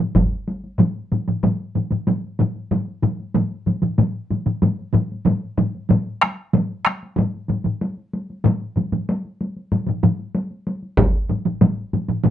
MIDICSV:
0, 0, Header, 1, 2, 480
1, 0, Start_track
1, 0, Tempo, 636943
1, 600, Time_signature, 4, 2, 24, 8
1, 9271, End_track
2, 0, Start_track
2, 0, Title_t, "Taiko and cinematic ensemble drums"
2, 0, Note_on_c, 9, 48, 41
2, 1, Note_on_c, 9, 47, 70
2, 75, Note_off_c, 9, 48, 0
2, 76, Note_off_c, 9, 47, 0
2, 112, Note_on_c, 9, 45, 94
2, 113, Note_on_c, 9, 41, 65
2, 120, Note_on_c, 9, 47, 87
2, 120, Note_on_c, 9, 48, 67
2, 188, Note_off_c, 9, 41, 0
2, 188, Note_off_c, 9, 45, 0
2, 195, Note_off_c, 9, 47, 0
2, 195, Note_off_c, 9, 48, 0
2, 240, Note_on_c, 9, 48, 20
2, 315, Note_off_c, 9, 48, 0
2, 359, Note_on_c, 9, 48, 50
2, 434, Note_off_c, 9, 48, 0
2, 481, Note_on_c, 9, 48, 20
2, 556, Note_off_c, 9, 48, 0
2, 595, Note_on_c, 9, 45, 90
2, 599, Note_on_c, 9, 47, 83
2, 600, Note_on_c, 9, 48, 57
2, 670, Note_off_c, 9, 45, 0
2, 674, Note_off_c, 9, 47, 0
2, 676, Note_off_c, 9, 48, 0
2, 721, Note_on_c, 9, 48, 17
2, 797, Note_off_c, 9, 48, 0
2, 841, Note_on_c, 9, 47, 55
2, 842, Note_on_c, 9, 45, 66
2, 842, Note_on_c, 9, 48, 43
2, 917, Note_off_c, 9, 47, 0
2, 917, Note_off_c, 9, 48, 0
2, 918, Note_off_c, 9, 45, 0
2, 962, Note_on_c, 9, 47, 64
2, 963, Note_on_c, 9, 45, 65
2, 1037, Note_off_c, 9, 47, 0
2, 1039, Note_off_c, 9, 45, 0
2, 1078, Note_on_c, 9, 45, 86
2, 1080, Note_on_c, 9, 47, 83
2, 1084, Note_on_c, 9, 48, 64
2, 1153, Note_off_c, 9, 45, 0
2, 1156, Note_off_c, 9, 47, 0
2, 1160, Note_off_c, 9, 48, 0
2, 1207, Note_on_c, 9, 48, 17
2, 1283, Note_off_c, 9, 48, 0
2, 1321, Note_on_c, 9, 47, 64
2, 1325, Note_on_c, 9, 45, 59
2, 1328, Note_on_c, 9, 48, 39
2, 1397, Note_off_c, 9, 47, 0
2, 1400, Note_off_c, 9, 45, 0
2, 1403, Note_off_c, 9, 48, 0
2, 1436, Note_on_c, 9, 47, 68
2, 1446, Note_on_c, 9, 45, 59
2, 1450, Note_on_c, 9, 48, 18
2, 1512, Note_off_c, 9, 47, 0
2, 1521, Note_off_c, 9, 45, 0
2, 1525, Note_off_c, 9, 48, 0
2, 1559, Note_on_c, 9, 47, 81
2, 1563, Note_on_c, 9, 48, 56
2, 1564, Note_on_c, 9, 45, 79
2, 1635, Note_off_c, 9, 47, 0
2, 1639, Note_off_c, 9, 48, 0
2, 1640, Note_off_c, 9, 45, 0
2, 1688, Note_on_c, 9, 48, 18
2, 1764, Note_off_c, 9, 48, 0
2, 1801, Note_on_c, 9, 47, 84
2, 1808, Note_on_c, 9, 48, 47
2, 1812, Note_on_c, 9, 45, 86
2, 1877, Note_off_c, 9, 47, 0
2, 1883, Note_off_c, 9, 48, 0
2, 1887, Note_off_c, 9, 45, 0
2, 1929, Note_on_c, 9, 48, 18
2, 2004, Note_off_c, 9, 48, 0
2, 2043, Note_on_c, 9, 47, 75
2, 2045, Note_on_c, 9, 45, 81
2, 2051, Note_on_c, 9, 48, 60
2, 2118, Note_off_c, 9, 47, 0
2, 2120, Note_off_c, 9, 45, 0
2, 2127, Note_off_c, 9, 48, 0
2, 2170, Note_on_c, 9, 48, 17
2, 2245, Note_off_c, 9, 48, 0
2, 2279, Note_on_c, 9, 47, 72
2, 2284, Note_on_c, 9, 45, 90
2, 2289, Note_on_c, 9, 48, 50
2, 2355, Note_off_c, 9, 47, 0
2, 2359, Note_off_c, 9, 45, 0
2, 2364, Note_off_c, 9, 48, 0
2, 2410, Note_on_c, 9, 48, 19
2, 2485, Note_off_c, 9, 48, 0
2, 2520, Note_on_c, 9, 47, 84
2, 2524, Note_on_c, 9, 45, 84
2, 2527, Note_on_c, 9, 48, 64
2, 2595, Note_off_c, 9, 47, 0
2, 2599, Note_off_c, 9, 45, 0
2, 2602, Note_off_c, 9, 48, 0
2, 2649, Note_on_c, 9, 48, 19
2, 2725, Note_off_c, 9, 48, 0
2, 2760, Note_on_c, 9, 45, 57
2, 2764, Note_on_c, 9, 47, 56
2, 2769, Note_on_c, 9, 48, 49
2, 2836, Note_off_c, 9, 45, 0
2, 2840, Note_off_c, 9, 47, 0
2, 2845, Note_off_c, 9, 48, 0
2, 2877, Note_on_c, 9, 47, 67
2, 2886, Note_on_c, 9, 45, 62
2, 2953, Note_off_c, 9, 47, 0
2, 2962, Note_off_c, 9, 45, 0
2, 2999, Note_on_c, 9, 47, 82
2, 3002, Note_on_c, 9, 45, 91
2, 3009, Note_on_c, 9, 48, 62
2, 3074, Note_off_c, 9, 47, 0
2, 3077, Note_off_c, 9, 45, 0
2, 3085, Note_off_c, 9, 48, 0
2, 3244, Note_on_c, 9, 45, 57
2, 3244, Note_on_c, 9, 47, 61
2, 3251, Note_on_c, 9, 48, 46
2, 3319, Note_off_c, 9, 47, 0
2, 3320, Note_off_c, 9, 45, 0
2, 3326, Note_off_c, 9, 48, 0
2, 3360, Note_on_c, 9, 47, 65
2, 3361, Note_on_c, 9, 45, 62
2, 3371, Note_on_c, 9, 48, 21
2, 3435, Note_off_c, 9, 47, 0
2, 3436, Note_off_c, 9, 45, 0
2, 3446, Note_off_c, 9, 48, 0
2, 3482, Note_on_c, 9, 45, 86
2, 3482, Note_on_c, 9, 47, 82
2, 3490, Note_on_c, 9, 48, 56
2, 3557, Note_off_c, 9, 45, 0
2, 3557, Note_off_c, 9, 47, 0
2, 3565, Note_off_c, 9, 48, 0
2, 3610, Note_on_c, 9, 48, 20
2, 3685, Note_off_c, 9, 48, 0
2, 3719, Note_on_c, 9, 47, 84
2, 3724, Note_on_c, 9, 45, 92
2, 3732, Note_on_c, 9, 48, 49
2, 3794, Note_off_c, 9, 47, 0
2, 3799, Note_off_c, 9, 45, 0
2, 3807, Note_off_c, 9, 48, 0
2, 3856, Note_on_c, 9, 48, 21
2, 3931, Note_off_c, 9, 48, 0
2, 3961, Note_on_c, 9, 47, 80
2, 3963, Note_on_c, 9, 45, 87
2, 3973, Note_on_c, 9, 48, 61
2, 4037, Note_off_c, 9, 47, 0
2, 4039, Note_off_c, 9, 45, 0
2, 4049, Note_off_c, 9, 48, 0
2, 4093, Note_on_c, 9, 48, 16
2, 4168, Note_off_c, 9, 48, 0
2, 4204, Note_on_c, 9, 45, 92
2, 4204, Note_on_c, 9, 47, 83
2, 4211, Note_on_c, 9, 48, 48
2, 4279, Note_off_c, 9, 45, 0
2, 4279, Note_off_c, 9, 47, 0
2, 4287, Note_off_c, 9, 48, 0
2, 4331, Note_on_c, 9, 48, 20
2, 4407, Note_off_c, 9, 48, 0
2, 4443, Note_on_c, 9, 47, 78
2, 4449, Note_on_c, 9, 45, 89
2, 4451, Note_on_c, 9, 48, 70
2, 4519, Note_off_c, 9, 47, 0
2, 4524, Note_off_c, 9, 45, 0
2, 4526, Note_off_c, 9, 48, 0
2, 4575, Note_on_c, 9, 48, 19
2, 4650, Note_off_c, 9, 48, 0
2, 4683, Note_on_c, 9, 37, 66
2, 4684, Note_off_c, 9, 37, 0
2, 4684, Note_on_c, 9, 37, 67
2, 4697, Note_on_c, 9, 48, 51
2, 4759, Note_off_c, 9, 37, 0
2, 4772, Note_off_c, 9, 48, 0
2, 4923, Note_on_c, 9, 47, 86
2, 4927, Note_on_c, 9, 45, 79
2, 4935, Note_on_c, 9, 48, 70
2, 4999, Note_off_c, 9, 47, 0
2, 5003, Note_off_c, 9, 45, 0
2, 5011, Note_off_c, 9, 48, 0
2, 5055, Note_on_c, 9, 48, 20
2, 5131, Note_off_c, 9, 48, 0
2, 5162, Note_on_c, 9, 37, 67
2, 5171, Note_off_c, 9, 37, 0
2, 5171, Note_on_c, 9, 37, 60
2, 5174, Note_on_c, 9, 48, 47
2, 5247, Note_off_c, 9, 37, 0
2, 5249, Note_off_c, 9, 48, 0
2, 5295, Note_on_c, 9, 48, 20
2, 5371, Note_off_c, 9, 48, 0
2, 5396, Note_on_c, 9, 47, 91
2, 5411, Note_on_c, 9, 45, 92
2, 5416, Note_on_c, 9, 48, 68
2, 5472, Note_off_c, 9, 47, 0
2, 5486, Note_off_c, 9, 45, 0
2, 5491, Note_off_c, 9, 48, 0
2, 5532, Note_on_c, 9, 48, 20
2, 5608, Note_off_c, 9, 48, 0
2, 5639, Note_on_c, 9, 47, 58
2, 5647, Note_on_c, 9, 45, 69
2, 5650, Note_on_c, 9, 48, 54
2, 5715, Note_off_c, 9, 47, 0
2, 5722, Note_off_c, 9, 45, 0
2, 5725, Note_off_c, 9, 48, 0
2, 5759, Note_on_c, 9, 47, 66
2, 5769, Note_on_c, 9, 45, 64
2, 5772, Note_on_c, 9, 48, 20
2, 5834, Note_off_c, 9, 47, 0
2, 5844, Note_off_c, 9, 45, 0
2, 5848, Note_off_c, 9, 48, 0
2, 5888, Note_on_c, 9, 48, 58
2, 5964, Note_off_c, 9, 48, 0
2, 6009, Note_on_c, 9, 48, 17
2, 6085, Note_off_c, 9, 48, 0
2, 6130, Note_on_c, 9, 48, 47
2, 6205, Note_off_c, 9, 48, 0
2, 6255, Note_on_c, 9, 48, 22
2, 6330, Note_off_c, 9, 48, 0
2, 6360, Note_on_c, 9, 47, 86
2, 6364, Note_on_c, 9, 45, 96
2, 6374, Note_on_c, 9, 48, 73
2, 6435, Note_off_c, 9, 47, 0
2, 6439, Note_off_c, 9, 45, 0
2, 6449, Note_off_c, 9, 48, 0
2, 6492, Note_on_c, 9, 48, 19
2, 6568, Note_off_c, 9, 48, 0
2, 6608, Note_on_c, 9, 45, 65
2, 6610, Note_on_c, 9, 47, 61
2, 6612, Note_on_c, 9, 48, 49
2, 6683, Note_off_c, 9, 45, 0
2, 6686, Note_off_c, 9, 47, 0
2, 6687, Note_off_c, 9, 48, 0
2, 6725, Note_on_c, 9, 47, 65
2, 6726, Note_on_c, 9, 45, 63
2, 6732, Note_on_c, 9, 48, 42
2, 6800, Note_off_c, 9, 47, 0
2, 6801, Note_off_c, 9, 45, 0
2, 6807, Note_off_c, 9, 48, 0
2, 6850, Note_on_c, 9, 48, 69
2, 6925, Note_off_c, 9, 48, 0
2, 6970, Note_on_c, 9, 48, 20
2, 7045, Note_off_c, 9, 48, 0
2, 7089, Note_on_c, 9, 48, 50
2, 7165, Note_off_c, 9, 48, 0
2, 7208, Note_on_c, 9, 48, 20
2, 7283, Note_off_c, 9, 48, 0
2, 7323, Note_on_c, 9, 45, 66
2, 7324, Note_on_c, 9, 47, 57
2, 7324, Note_on_c, 9, 48, 60
2, 7399, Note_off_c, 9, 45, 0
2, 7399, Note_off_c, 9, 47, 0
2, 7399, Note_off_c, 9, 48, 0
2, 7435, Note_on_c, 9, 47, 62
2, 7443, Note_on_c, 9, 48, 19
2, 7451, Note_on_c, 9, 45, 68
2, 7510, Note_off_c, 9, 47, 0
2, 7518, Note_off_c, 9, 48, 0
2, 7526, Note_off_c, 9, 45, 0
2, 7558, Note_on_c, 9, 48, 52
2, 7560, Note_on_c, 9, 47, 86
2, 7567, Note_on_c, 9, 45, 91
2, 7634, Note_off_c, 9, 48, 0
2, 7636, Note_off_c, 9, 47, 0
2, 7642, Note_off_c, 9, 45, 0
2, 7681, Note_on_c, 9, 48, 20
2, 7757, Note_off_c, 9, 48, 0
2, 7797, Note_on_c, 9, 48, 61
2, 7872, Note_off_c, 9, 48, 0
2, 7918, Note_on_c, 9, 48, 20
2, 7993, Note_off_c, 9, 48, 0
2, 8039, Note_on_c, 9, 48, 55
2, 8114, Note_off_c, 9, 48, 0
2, 8158, Note_on_c, 9, 48, 19
2, 8233, Note_off_c, 9, 48, 0
2, 8272, Note_on_c, 9, 41, 97
2, 8274, Note_on_c, 9, 45, 83
2, 8278, Note_on_c, 9, 47, 81
2, 8278, Note_on_c, 9, 48, 69
2, 8348, Note_off_c, 9, 41, 0
2, 8349, Note_off_c, 9, 45, 0
2, 8353, Note_off_c, 9, 47, 0
2, 8353, Note_off_c, 9, 48, 0
2, 8395, Note_on_c, 9, 48, 20
2, 8471, Note_off_c, 9, 48, 0
2, 8511, Note_on_c, 9, 48, 54
2, 8513, Note_on_c, 9, 47, 64
2, 8518, Note_on_c, 9, 45, 63
2, 8587, Note_off_c, 9, 48, 0
2, 8588, Note_off_c, 9, 47, 0
2, 8593, Note_off_c, 9, 45, 0
2, 8634, Note_on_c, 9, 47, 71
2, 8635, Note_on_c, 9, 45, 59
2, 8710, Note_off_c, 9, 47, 0
2, 8711, Note_off_c, 9, 45, 0
2, 8750, Note_on_c, 9, 45, 95
2, 8750, Note_on_c, 9, 48, 73
2, 8754, Note_on_c, 9, 47, 92
2, 8826, Note_off_c, 9, 45, 0
2, 8826, Note_off_c, 9, 48, 0
2, 8829, Note_off_c, 9, 47, 0
2, 8875, Note_on_c, 9, 48, 21
2, 8951, Note_off_c, 9, 48, 0
2, 8993, Note_on_c, 9, 45, 62
2, 8993, Note_on_c, 9, 47, 63
2, 8993, Note_on_c, 9, 48, 48
2, 9068, Note_off_c, 9, 47, 0
2, 9069, Note_off_c, 9, 45, 0
2, 9069, Note_off_c, 9, 48, 0
2, 9107, Note_on_c, 9, 47, 71
2, 9109, Note_on_c, 9, 48, 20
2, 9113, Note_on_c, 9, 45, 70
2, 9182, Note_off_c, 9, 47, 0
2, 9184, Note_off_c, 9, 48, 0
2, 9188, Note_off_c, 9, 45, 0
2, 9226, Note_on_c, 9, 47, 91
2, 9229, Note_on_c, 9, 45, 92
2, 9229, Note_on_c, 9, 48, 61
2, 9271, Note_off_c, 9, 45, 0
2, 9271, Note_off_c, 9, 47, 0
2, 9271, Note_off_c, 9, 48, 0
2, 9271, End_track
0, 0, End_of_file